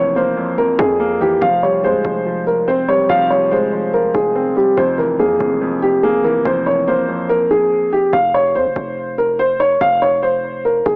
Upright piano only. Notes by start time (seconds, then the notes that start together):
Already playing: C#5
0.16 C5
0.58 A#4
0.79 G#4
1.21 G4
1.41 F5
1.63 C#5
1.84 C5
2.47 A#4
2.68 C5
2.88 C#5
3.09 F5
3.30 C#5
3.51 C5
3.93 A#4
4.14 G#4
4.56 G4
4.77 C5
4.98 A#4
5.19 G#4
5.82 G4
6.03 G#4
6.25 A#4
6.46 C5
6.66 C#5
6.88 C5
7.29 A#4
7.51 G#4
7.93 G4
8.13 F5
8.34 C#5
8.55 C5
9.18 A#4
9.39 C5
9.60 C#5
9.81 F5
10.02 C#5
10.23 C5
10.65 A#4
10.86 G#4